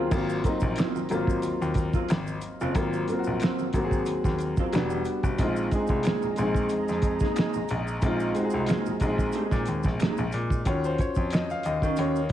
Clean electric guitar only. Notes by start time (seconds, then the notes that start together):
Already playing: C4 F4
0.00 F#3
0.78 F#3 C4 F4
1.95 F#3 C4 F4
2.61 F#3 C4 F4
3.42 F#3 C4 F4
4.59 F#3 C4 F4
4.74 G3 D4 F#4
6.06 A#3 D#4 G#4
7.22 A#3 D#4 G#4
7.38 A#3 D#4 G#4
8.69 A#3 D#4 G#4
9.35 A#3 D#4 G#4
10.01 A#3 D#4 G#4
11.84 C#4 F#4 A#4
11.99 C#4 F#4 A#4